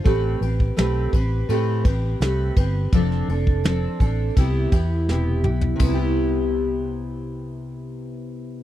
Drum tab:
CC |----------------|----------------|x---------------|
RD |x-x-x-x-x-x-x-x-|x-x-x-x-x-x-----|----------------|
SD |----o-------o---|-o--o-------o---|----------------|
T2 |----------------|--------------o-|----------------|
FT |----------------|---------------o|o---------------|
BD |o--o--o---o---o-|o--o--o-o-o-----|o---------------|